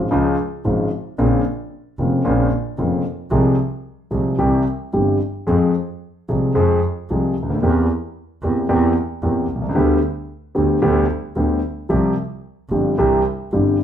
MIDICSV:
0, 0, Header, 1, 3, 480
1, 0, Start_track
1, 0, Key_signature, -4, "minor"
1, 0, Tempo, 531915
1, 1062, Time_signature, 4, 2, 24, 8
1, 2504, Tempo, 541028
1, 6344, Tempo, 530504
1, 9704, Tempo, 542495
1, 12376, End_track
2, 0, Start_track
2, 0, Title_t, "Grand piano"
2, 0, Program_c, 0, 0
2, 98, Note_on_c, 0, 49, 68
2, 102, Note_on_c, 0, 53, 52
2, 102, Note_on_c, 0, 56, 57
2, 103, Note_on_c, 0, 37, 69
2, 106, Note_on_c, 0, 65, 69
2, 305, Note_off_c, 0, 37, 0
2, 305, Note_off_c, 0, 49, 0
2, 305, Note_off_c, 0, 53, 0
2, 305, Note_off_c, 0, 56, 0
2, 307, Note_off_c, 0, 65, 0
2, 584, Note_on_c, 0, 44, 46
2, 585, Note_on_c, 0, 32, 44
2, 585, Note_on_c, 0, 49, 42
2, 588, Note_on_c, 0, 65, 41
2, 590, Note_on_c, 0, 53, 36
2, 590, Note_on_c, 0, 56, 36
2, 785, Note_off_c, 0, 44, 0
2, 786, Note_off_c, 0, 32, 0
2, 786, Note_off_c, 0, 49, 0
2, 787, Note_off_c, 0, 65, 0
2, 788, Note_off_c, 0, 53, 0
2, 788, Note_off_c, 0, 56, 0
2, 1067, Note_on_c, 0, 58, 50
2, 1068, Note_on_c, 0, 49, 58
2, 1069, Note_on_c, 0, 65, 61
2, 1070, Note_on_c, 0, 34, 63
2, 1070, Note_on_c, 0, 46, 66
2, 1072, Note_on_c, 0, 60, 50
2, 1266, Note_off_c, 0, 49, 0
2, 1266, Note_off_c, 0, 58, 0
2, 1267, Note_off_c, 0, 34, 0
2, 1267, Note_off_c, 0, 46, 0
2, 1267, Note_off_c, 0, 65, 0
2, 1268, Note_off_c, 0, 60, 0
2, 1795, Note_on_c, 0, 49, 38
2, 1797, Note_on_c, 0, 60, 34
2, 1798, Note_on_c, 0, 58, 33
2, 1799, Note_on_c, 0, 29, 42
2, 1801, Note_on_c, 0, 41, 44
2, 1805, Note_on_c, 0, 65, 39
2, 1990, Note_off_c, 0, 49, 0
2, 1991, Note_off_c, 0, 60, 0
2, 1992, Note_off_c, 0, 29, 0
2, 1992, Note_off_c, 0, 58, 0
2, 1993, Note_off_c, 0, 41, 0
2, 1995, Note_off_c, 0, 65, 0
2, 2028, Note_on_c, 0, 46, 70
2, 2028, Note_on_c, 0, 58, 54
2, 2030, Note_on_c, 0, 49, 59
2, 2032, Note_on_c, 0, 65, 69
2, 2035, Note_on_c, 0, 34, 72
2, 2035, Note_on_c, 0, 60, 58
2, 2226, Note_off_c, 0, 46, 0
2, 2226, Note_off_c, 0, 58, 0
2, 2228, Note_off_c, 0, 49, 0
2, 2228, Note_off_c, 0, 65, 0
2, 2230, Note_off_c, 0, 34, 0
2, 2230, Note_off_c, 0, 60, 0
2, 2509, Note_on_c, 0, 49, 36
2, 2512, Note_on_c, 0, 29, 45
2, 2512, Note_on_c, 0, 41, 44
2, 2514, Note_on_c, 0, 58, 36
2, 2515, Note_on_c, 0, 60, 35
2, 2518, Note_on_c, 0, 65, 46
2, 2706, Note_off_c, 0, 49, 0
2, 2708, Note_off_c, 0, 29, 0
2, 2708, Note_off_c, 0, 41, 0
2, 2709, Note_off_c, 0, 58, 0
2, 2709, Note_off_c, 0, 60, 0
2, 2711, Note_off_c, 0, 65, 0
2, 2978, Note_on_c, 0, 60, 47
2, 2979, Note_on_c, 0, 48, 63
2, 2979, Note_on_c, 0, 56, 50
2, 2982, Note_on_c, 0, 53, 53
2, 2983, Note_on_c, 0, 36, 60
2, 2985, Note_on_c, 0, 68, 61
2, 3181, Note_off_c, 0, 60, 0
2, 3182, Note_off_c, 0, 48, 0
2, 3182, Note_off_c, 0, 56, 0
2, 3184, Note_off_c, 0, 36, 0
2, 3184, Note_off_c, 0, 53, 0
2, 3185, Note_off_c, 0, 68, 0
2, 3686, Note_on_c, 0, 48, 44
2, 3686, Note_on_c, 0, 53, 37
2, 3686, Note_on_c, 0, 56, 33
2, 3689, Note_on_c, 0, 36, 38
2, 3690, Note_on_c, 0, 60, 33
2, 3695, Note_on_c, 0, 68, 36
2, 3893, Note_off_c, 0, 48, 0
2, 3893, Note_off_c, 0, 53, 0
2, 3893, Note_off_c, 0, 56, 0
2, 3895, Note_off_c, 0, 36, 0
2, 3895, Note_off_c, 0, 60, 0
2, 3898, Note_off_c, 0, 68, 0
2, 3932, Note_on_c, 0, 60, 51
2, 3933, Note_on_c, 0, 55, 48
2, 3934, Note_on_c, 0, 36, 61
2, 3934, Note_on_c, 0, 48, 62
2, 3934, Note_on_c, 0, 52, 57
2, 3938, Note_on_c, 0, 67, 65
2, 4138, Note_off_c, 0, 55, 0
2, 4138, Note_off_c, 0, 60, 0
2, 4139, Note_off_c, 0, 36, 0
2, 4139, Note_off_c, 0, 48, 0
2, 4139, Note_off_c, 0, 52, 0
2, 4141, Note_off_c, 0, 67, 0
2, 4417, Note_on_c, 0, 43, 43
2, 4418, Note_on_c, 0, 52, 37
2, 4420, Note_on_c, 0, 55, 36
2, 4421, Note_on_c, 0, 60, 32
2, 4422, Note_on_c, 0, 31, 42
2, 4422, Note_on_c, 0, 67, 42
2, 4623, Note_off_c, 0, 43, 0
2, 4624, Note_off_c, 0, 52, 0
2, 4625, Note_off_c, 0, 55, 0
2, 4625, Note_off_c, 0, 60, 0
2, 4626, Note_off_c, 0, 31, 0
2, 4626, Note_off_c, 0, 67, 0
2, 4891, Note_on_c, 0, 53, 61
2, 4893, Note_on_c, 0, 41, 63
2, 4897, Note_on_c, 0, 68, 58
2, 4898, Note_on_c, 0, 56, 43
2, 4900, Note_on_c, 0, 60, 49
2, 5101, Note_off_c, 0, 41, 0
2, 5102, Note_off_c, 0, 53, 0
2, 5103, Note_off_c, 0, 56, 0
2, 5103, Note_off_c, 0, 68, 0
2, 5105, Note_off_c, 0, 60, 0
2, 5618, Note_on_c, 0, 53, 36
2, 5620, Note_on_c, 0, 48, 41
2, 5620, Note_on_c, 0, 68, 39
2, 5623, Note_on_c, 0, 56, 32
2, 5623, Note_on_c, 0, 60, 31
2, 5624, Note_on_c, 0, 36, 40
2, 5824, Note_off_c, 0, 53, 0
2, 5825, Note_off_c, 0, 48, 0
2, 5825, Note_off_c, 0, 68, 0
2, 5826, Note_off_c, 0, 56, 0
2, 5826, Note_off_c, 0, 60, 0
2, 5827, Note_off_c, 0, 36, 0
2, 5851, Note_on_c, 0, 53, 65
2, 5853, Note_on_c, 0, 56, 52
2, 5854, Note_on_c, 0, 60, 50
2, 5855, Note_on_c, 0, 68, 64
2, 5856, Note_on_c, 0, 41, 72
2, 6061, Note_off_c, 0, 53, 0
2, 6061, Note_off_c, 0, 56, 0
2, 6061, Note_off_c, 0, 60, 0
2, 6061, Note_off_c, 0, 68, 0
2, 6062, Note_off_c, 0, 41, 0
2, 6341, Note_on_c, 0, 53, 40
2, 6345, Note_on_c, 0, 56, 34
2, 6347, Note_on_c, 0, 60, 33
2, 6348, Note_on_c, 0, 36, 42
2, 6348, Note_on_c, 0, 48, 45
2, 6352, Note_on_c, 0, 68, 44
2, 6544, Note_off_c, 0, 53, 0
2, 6546, Note_off_c, 0, 56, 0
2, 6548, Note_off_c, 0, 36, 0
2, 6548, Note_off_c, 0, 48, 0
2, 6548, Note_off_c, 0, 60, 0
2, 6550, Note_off_c, 0, 68, 0
2, 6638, Note_on_c, 0, 37, 37
2, 6701, Note_off_c, 0, 37, 0
2, 6701, Note_on_c, 0, 38, 47
2, 6756, Note_on_c, 0, 39, 56
2, 6762, Note_off_c, 0, 38, 0
2, 6816, Note_on_c, 0, 52, 60
2, 6819, Note_off_c, 0, 39, 0
2, 6819, Note_on_c, 0, 40, 58
2, 6819, Note_on_c, 0, 58, 52
2, 6823, Note_on_c, 0, 60, 47
2, 6823, Note_on_c, 0, 67, 57
2, 7022, Note_off_c, 0, 40, 0
2, 7022, Note_off_c, 0, 52, 0
2, 7022, Note_off_c, 0, 58, 0
2, 7024, Note_off_c, 0, 60, 0
2, 7024, Note_off_c, 0, 67, 0
2, 7547, Note_on_c, 0, 52, 45
2, 7547, Note_on_c, 0, 58, 35
2, 7552, Note_on_c, 0, 40, 40
2, 7554, Note_on_c, 0, 60, 34
2, 7554, Note_on_c, 0, 67, 40
2, 7749, Note_off_c, 0, 58, 0
2, 7750, Note_off_c, 0, 52, 0
2, 7752, Note_off_c, 0, 40, 0
2, 7753, Note_off_c, 0, 60, 0
2, 7753, Note_off_c, 0, 67, 0
2, 7780, Note_on_c, 0, 40, 72
2, 7780, Note_on_c, 0, 58, 56
2, 7781, Note_on_c, 0, 52, 70
2, 7781, Note_on_c, 0, 67, 68
2, 7785, Note_on_c, 0, 60, 55
2, 7985, Note_off_c, 0, 58, 0
2, 7986, Note_off_c, 0, 40, 0
2, 7986, Note_off_c, 0, 52, 0
2, 7986, Note_off_c, 0, 67, 0
2, 7988, Note_off_c, 0, 60, 0
2, 8266, Note_on_c, 0, 52, 49
2, 8267, Note_on_c, 0, 40, 47
2, 8270, Note_on_c, 0, 58, 37
2, 8271, Note_on_c, 0, 67, 46
2, 8273, Note_on_c, 0, 60, 39
2, 8465, Note_off_c, 0, 40, 0
2, 8467, Note_off_c, 0, 52, 0
2, 8467, Note_off_c, 0, 58, 0
2, 8467, Note_off_c, 0, 67, 0
2, 8468, Note_off_c, 0, 60, 0
2, 8561, Note_on_c, 0, 35, 40
2, 8618, Note_on_c, 0, 36, 48
2, 8621, Note_off_c, 0, 35, 0
2, 8679, Note_off_c, 0, 36, 0
2, 8684, Note_on_c, 0, 37, 58
2, 8737, Note_on_c, 0, 55, 54
2, 8740, Note_on_c, 0, 50, 65
2, 8740, Note_on_c, 0, 59, 53
2, 8740, Note_on_c, 0, 67, 61
2, 8741, Note_on_c, 0, 38, 67
2, 8742, Note_off_c, 0, 37, 0
2, 8940, Note_off_c, 0, 55, 0
2, 8942, Note_off_c, 0, 38, 0
2, 8942, Note_off_c, 0, 50, 0
2, 8942, Note_off_c, 0, 59, 0
2, 8942, Note_off_c, 0, 67, 0
2, 9461, Note_on_c, 0, 38, 44
2, 9462, Note_on_c, 0, 50, 44
2, 9462, Note_on_c, 0, 55, 32
2, 9463, Note_on_c, 0, 59, 35
2, 9469, Note_on_c, 0, 67, 39
2, 9665, Note_off_c, 0, 38, 0
2, 9666, Note_off_c, 0, 55, 0
2, 9666, Note_off_c, 0, 59, 0
2, 9668, Note_off_c, 0, 50, 0
2, 9669, Note_off_c, 0, 67, 0
2, 9704, Note_on_c, 0, 50, 73
2, 9707, Note_on_c, 0, 38, 75
2, 9708, Note_on_c, 0, 59, 53
2, 9710, Note_on_c, 0, 55, 57
2, 9711, Note_on_c, 0, 67, 69
2, 9903, Note_off_c, 0, 50, 0
2, 9905, Note_off_c, 0, 38, 0
2, 9905, Note_off_c, 0, 59, 0
2, 9906, Note_off_c, 0, 55, 0
2, 9907, Note_off_c, 0, 67, 0
2, 10182, Note_on_c, 0, 50, 44
2, 10185, Note_on_c, 0, 55, 34
2, 10187, Note_on_c, 0, 38, 47
2, 10188, Note_on_c, 0, 59, 39
2, 10188, Note_on_c, 0, 67, 41
2, 10382, Note_off_c, 0, 50, 0
2, 10382, Note_off_c, 0, 55, 0
2, 10383, Note_off_c, 0, 38, 0
2, 10383, Note_off_c, 0, 59, 0
2, 10384, Note_off_c, 0, 67, 0
2, 10655, Note_on_c, 0, 55, 46
2, 10659, Note_on_c, 0, 53, 56
2, 10660, Note_on_c, 0, 36, 59
2, 10660, Note_on_c, 0, 60, 47
2, 10661, Note_on_c, 0, 48, 60
2, 10663, Note_on_c, 0, 67, 60
2, 10856, Note_off_c, 0, 55, 0
2, 10859, Note_off_c, 0, 36, 0
2, 10859, Note_off_c, 0, 48, 0
2, 10859, Note_off_c, 0, 53, 0
2, 10859, Note_off_c, 0, 60, 0
2, 10860, Note_off_c, 0, 67, 0
2, 11378, Note_on_c, 0, 53, 36
2, 11382, Note_on_c, 0, 31, 44
2, 11382, Note_on_c, 0, 55, 33
2, 11385, Note_on_c, 0, 43, 40
2, 11386, Note_on_c, 0, 60, 34
2, 11389, Note_on_c, 0, 67, 38
2, 11579, Note_off_c, 0, 53, 0
2, 11581, Note_off_c, 0, 31, 0
2, 11581, Note_off_c, 0, 55, 0
2, 11582, Note_off_c, 0, 43, 0
2, 11583, Note_off_c, 0, 60, 0
2, 11584, Note_off_c, 0, 67, 0
2, 11614, Note_on_c, 0, 52, 61
2, 11620, Note_on_c, 0, 60, 52
2, 11621, Note_on_c, 0, 55, 55
2, 11622, Note_on_c, 0, 48, 72
2, 11624, Note_on_c, 0, 36, 68
2, 11624, Note_on_c, 0, 67, 61
2, 11818, Note_off_c, 0, 52, 0
2, 11821, Note_off_c, 0, 60, 0
2, 11822, Note_off_c, 0, 48, 0
2, 11822, Note_off_c, 0, 55, 0
2, 11823, Note_off_c, 0, 36, 0
2, 11823, Note_off_c, 0, 67, 0
2, 12102, Note_on_c, 0, 52, 34
2, 12102, Note_on_c, 0, 55, 34
2, 12105, Note_on_c, 0, 43, 44
2, 12107, Note_on_c, 0, 60, 33
2, 12108, Note_on_c, 0, 31, 45
2, 12110, Note_on_c, 0, 67, 39
2, 12306, Note_off_c, 0, 52, 0
2, 12306, Note_off_c, 0, 55, 0
2, 12308, Note_off_c, 0, 43, 0
2, 12309, Note_off_c, 0, 31, 0
2, 12309, Note_off_c, 0, 60, 0
2, 12310, Note_off_c, 0, 67, 0
2, 12376, End_track
3, 0, Start_track
3, 0, Title_t, "Double bass"
3, 0, Program_c, 1, 43
3, 121, Note_on_c, 1, 37, 76
3, 314, Note_off_c, 1, 37, 0
3, 591, Note_on_c, 1, 32, 46
3, 789, Note_off_c, 1, 32, 0
3, 1073, Note_on_c, 1, 34, 71
3, 1268, Note_off_c, 1, 34, 0
3, 1797, Note_on_c, 1, 29, 50
3, 1991, Note_off_c, 1, 29, 0
3, 2032, Note_on_c, 1, 34, 82
3, 2228, Note_off_c, 1, 34, 0
3, 2514, Note_on_c, 1, 29, 49
3, 2709, Note_off_c, 1, 29, 0
3, 2981, Note_on_c, 1, 36, 67
3, 3183, Note_off_c, 1, 36, 0
3, 3698, Note_on_c, 1, 36, 50
3, 3899, Note_off_c, 1, 36, 0
3, 3942, Note_on_c, 1, 36, 73
3, 4143, Note_off_c, 1, 36, 0
3, 4424, Note_on_c, 1, 31, 40
3, 4627, Note_off_c, 1, 31, 0
3, 4904, Note_on_c, 1, 41, 68
3, 5106, Note_off_c, 1, 41, 0
3, 5628, Note_on_c, 1, 36, 47
3, 5829, Note_off_c, 1, 36, 0
3, 5858, Note_on_c, 1, 41, 75
3, 6063, Note_off_c, 1, 41, 0
3, 6342, Note_on_c, 1, 36, 43
3, 6545, Note_off_c, 1, 36, 0
3, 6584, Note_on_c, 1, 38, 45
3, 6813, Note_off_c, 1, 38, 0
3, 6819, Note_on_c, 1, 40, 77
3, 7022, Note_off_c, 1, 40, 0
3, 7540, Note_on_c, 1, 40, 54
3, 7746, Note_off_c, 1, 40, 0
3, 7784, Note_on_c, 1, 40, 76
3, 7988, Note_off_c, 1, 40, 0
3, 8263, Note_on_c, 1, 40, 46
3, 8463, Note_off_c, 1, 40, 0
3, 8504, Note_on_c, 1, 36, 44
3, 8734, Note_off_c, 1, 36, 0
3, 8739, Note_on_c, 1, 38, 81
3, 8941, Note_off_c, 1, 38, 0
3, 9476, Note_on_c, 1, 38, 58
3, 9672, Note_off_c, 1, 38, 0
3, 9713, Note_on_c, 1, 38, 83
3, 9908, Note_off_c, 1, 38, 0
3, 10185, Note_on_c, 1, 38, 46
3, 10382, Note_off_c, 1, 38, 0
3, 10665, Note_on_c, 1, 36, 69
3, 10861, Note_off_c, 1, 36, 0
3, 11368, Note_on_c, 1, 31, 49
3, 11574, Note_off_c, 1, 31, 0
3, 11615, Note_on_c, 1, 36, 80
3, 11819, Note_off_c, 1, 36, 0
3, 12098, Note_on_c, 1, 31, 43
3, 12304, Note_off_c, 1, 31, 0
3, 12376, End_track
0, 0, End_of_file